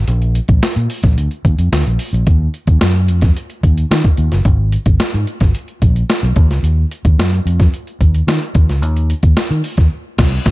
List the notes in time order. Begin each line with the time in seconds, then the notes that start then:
0.08 A#1, closed hi-hat
0.22 closed hi-hat
0.35 closed hi-hat
0.48 A#1, kick, closed hi-hat
0.63 muted fingered electric bass stroke, snare, closed hi-hat
0.76 A#2, closed hi-hat
0.90 open hi-hat
1.03 A#1, kick, snare, closed hi-hat
1.17 D2, closed hi-hat
1.31 closed hi-hat
1.45 D#2, kick, closed hi-hat
1.59 F2, closed hi-hat
1.72 D2, snare, closed hi-hat
1.86 A#1, closed hi-hat
1.99 open hi-hat
2.13 A#1, closed hi-hat
2.27 D#2, kick, closed hi-hat
2.54 closed hi-hat
2.67 D#2, kick, closed hi-hat
2.81 F#2, snare, closed hi-hat
2.95 closed hi-hat
3.08 F2, closed hi-hat
3.21 kick, snare, closed hi-hat
3.36 closed hi-hat
3.50 closed hi-hat
3.63 D#2, kick, closed hi-hat
3.78 closed hi-hat
3.91 D#3, snare, closed hi-hat
4.05 kick, closed hi-hat
4.17 D#2, closed hi-hat
4.32 F#1, snare, closed hi-hat
4.45 G#1, kick, closed hi-hat
4.72 closed hi-hat
4.86 G#1, kick, closed hi-hat
5.00 muted fingered electric bass stroke, snare, closed hi-hat
5.14 G#2, closed hi-hat
5.27 closed hi-hat
5.40 G#1, kick, snare, closed hi-hat
5.55 closed hi-hat
5.68 closed hi-hat
5.82 A#1, kick, closed hi-hat
5.96 closed hi-hat
6.09 snare, closed hi-hat
6.23 B1, closed hi-hat
6.36 D#2, kick, closed hi-hat
6.49 C#2, snare, closed hi-hat
6.63 D#2, closed hi-hat
6.91 closed hi-hat
7.05 D#2, kick, closed hi-hat
7.18 F#2, snare, closed hi-hat
7.33 closed hi-hat
7.45 F2, closed hi-hat
7.60 kick, snare, closed hi-hat
7.74 closed hi-hat
7.87 closed hi-hat
8.01 D#2, kick, closed hi-hat
8.14 closed hi-hat
8.27 D#3, snare, closed hi-hat
8.42 closed hi-hat
8.55 D#2, kick, closed hi-hat
8.69 C#2, snare, closed hi-hat
8.82 D#2, closed hi-hat
8.96 closed hi-hat
9.10 closed hi-hat
9.23 D#2, kick, closed hi-hat
9.37 snare, closed hi-hat
9.51 D#3, closed hi-hat
9.64 open hi-hat
9.77 D#2, kick, snare, closed hi-hat
10.18 C2, kick, snare, crash
10.46 C2, kick, snare, crash